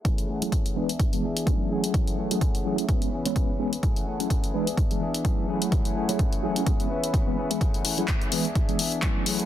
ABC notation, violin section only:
X:1
M:4/4
L:1/8
Q:"Swing 16ths" 1/4=127
K:F#m
V:1 name="Violin section"
[A,EGf]3 [DGe]4 [A,Ef]- | [A,Ef]4 [CBe]4 | [A,EGf]3 [De]4 [A,EGf]- | [A,EGf]4 [CBe]4 |
[A,EGf]3 [De]4 [A,EGf] |]